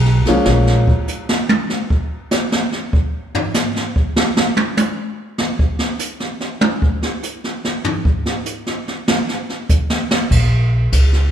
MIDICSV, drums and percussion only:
0, 0, Header, 1, 2, 480
1, 0, Start_track
1, 0, Key_signature, -5, "minor"
1, 0, Tempo, 615385
1, 367, Time_signature, 4, 2, 24, 8
1, 8825, End_track
2, 0, Start_track
2, 0, Title_t, "Drums"
2, 40, Note_on_c, 9, 38, 26
2, 118, Note_off_c, 9, 38, 0
2, 198, Note_on_c, 9, 38, 44
2, 207, Note_on_c, 9, 51, 50
2, 276, Note_off_c, 9, 38, 0
2, 285, Note_off_c, 9, 51, 0
2, 355, Note_on_c, 9, 38, 95
2, 433, Note_off_c, 9, 38, 0
2, 520, Note_on_c, 9, 38, 40
2, 598, Note_off_c, 9, 38, 0
2, 682, Note_on_c, 9, 36, 82
2, 760, Note_off_c, 9, 36, 0
2, 840, Note_on_c, 9, 44, 53
2, 918, Note_off_c, 9, 44, 0
2, 1006, Note_on_c, 9, 38, 95
2, 1084, Note_off_c, 9, 38, 0
2, 1164, Note_on_c, 9, 48, 91
2, 1242, Note_off_c, 9, 48, 0
2, 1323, Note_on_c, 9, 38, 48
2, 1401, Note_off_c, 9, 38, 0
2, 1485, Note_on_c, 9, 36, 70
2, 1563, Note_off_c, 9, 36, 0
2, 1802, Note_on_c, 9, 44, 59
2, 1804, Note_on_c, 9, 38, 92
2, 1880, Note_off_c, 9, 44, 0
2, 1882, Note_off_c, 9, 38, 0
2, 1966, Note_on_c, 9, 38, 84
2, 2044, Note_off_c, 9, 38, 0
2, 2124, Note_on_c, 9, 38, 39
2, 2202, Note_off_c, 9, 38, 0
2, 2287, Note_on_c, 9, 36, 85
2, 2365, Note_off_c, 9, 36, 0
2, 2611, Note_on_c, 9, 43, 110
2, 2689, Note_off_c, 9, 43, 0
2, 2763, Note_on_c, 9, 44, 62
2, 2765, Note_on_c, 9, 38, 102
2, 2841, Note_off_c, 9, 44, 0
2, 2843, Note_off_c, 9, 38, 0
2, 2932, Note_on_c, 9, 38, 45
2, 3010, Note_off_c, 9, 38, 0
2, 3088, Note_on_c, 9, 36, 72
2, 3166, Note_off_c, 9, 36, 0
2, 3247, Note_on_c, 9, 38, 88
2, 3325, Note_off_c, 9, 38, 0
2, 3407, Note_on_c, 9, 38, 97
2, 3485, Note_off_c, 9, 38, 0
2, 3562, Note_on_c, 9, 48, 92
2, 3640, Note_off_c, 9, 48, 0
2, 3722, Note_on_c, 9, 44, 55
2, 3723, Note_on_c, 9, 48, 102
2, 3800, Note_off_c, 9, 44, 0
2, 3801, Note_off_c, 9, 48, 0
2, 4198, Note_on_c, 9, 38, 94
2, 4276, Note_off_c, 9, 38, 0
2, 4362, Note_on_c, 9, 36, 78
2, 4440, Note_off_c, 9, 36, 0
2, 4514, Note_on_c, 9, 38, 42
2, 4592, Note_off_c, 9, 38, 0
2, 4674, Note_on_c, 9, 44, 62
2, 4752, Note_off_c, 9, 44, 0
2, 4837, Note_on_c, 9, 38, 41
2, 4915, Note_off_c, 9, 38, 0
2, 4995, Note_on_c, 9, 38, 35
2, 5073, Note_off_c, 9, 38, 0
2, 5157, Note_on_c, 9, 48, 96
2, 5235, Note_off_c, 9, 48, 0
2, 5320, Note_on_c, 9, 36, 76
2, 5398, Note_off_c, 9, 36, 0
2, 5478, Note_on_c, 9, 38, 42
2, 5556, Note_off_c, 9, 38, 0
2, 5640, Note_on_c, 9, 44, 58
2, 5718, Note_off_c, 9, 44, 0
2, 5803, Note_on_c, 9, 38, 33
2, 5881, Note_off_c, 9, 38, 0
2, 5963, Note_on_c, 9, 38, 55
2, 6041, Note_off_c, 9, 38, 0
2, 6119, Note_on_c, 9, 43, 101
2, 6197, Note_off_c, 9, 43, 0
2, 6280, Note_on_c, 9, 36, 77
2, 6358, Note_off_c, 9, 36, 0
2, 6440, Note_on_c, 9, 38, 42
2, 6518, Note_off_c, 9, 38, 0
2, 6596, Note_on_c, 9, 44, 57
2, 6674, Note_off_c, 9, 44, 0
2, 6758, Note_on_c, 9, 38, 43
2, 6836, Note_off_c, 9, 38, 0
2, 6925, Note_on_c, 9, 38, 39
2, 7003, Note_off_c, 9, 38, 0
2, 7081, Note_on_c, 9, 38, 109
2, 7159, Note_off_c, 9, 38, 0
2, 7245, Note_on_c, 9, 38, 43
2, 7323, Note_off_c, 9, 38, 0
2, 7404, Note_on_c, 9, 38, 37
2, 7482, Note_off_c, 9, 38, 0
2, 7560, Note_on_c, 9, 44, 66
2, 7562, Note_on_c, 9, 36, 87
2, 7638, Note_off_c, 9, 44, 0
2, 7640, Note_off_c, 9, 36, 0
2, 7721, Note_on_c, 9, 38, 79
2, 7799, Note_off_c, 9, 38, 0
2, 7884, Note_on_c, 9, 38, 110
2, 7962, Note_off_c, 9, 38, 0
2, 8042, Note_on_c, 9, 36, 75
2, 8046, Note_on_c, 9, 49, 84
2, 8120, Note_off_c, 9, 36, 0
2, 8124, Note_off_c, 9, 49, 0
2, 8521, Note_on_c, 9, 44, 57
2, 8521, Note_on_c, 9, 51, 77
2, 8522, Note_on_c, 9, 36, 24
2, 8599, Note_off_c, 9, 44, 0
2, 8599, Note_off_c, 9, 51, 0
2, 8600, Note_off_c, 9, 36, 0
2, 8681, Note_on_c, 9, 38, 26
2, 8759, Note_off_c, 9, 38, 0
2, 8825, End_track
0, 0, End_of_file